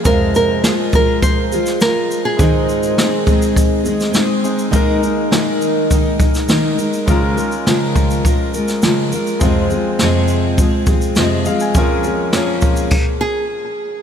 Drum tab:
CC |----------------|----------------|----------------|----------------|
SH |x-x-x-x-x-xxx-x-|x-xxx-xxx-xxx-xx|x-x-x-x-x-xxx-xx|x-xxx-xxx-xxx-xx|
SD |----o------oo---|----o------oo---|----o------oo---|----o------oo---|
BD |o-----o-o-------|o-----o-o-------|o-------o-o-----|o-----o-o-------|

CC |----------------|--------x-------|
SH |x-x-x-x-x-xxx-xx|x-x-x-xx--------|
SD |----o-------o---|----o-----------|
BD |o-------o-o-----|o-----o-o-------|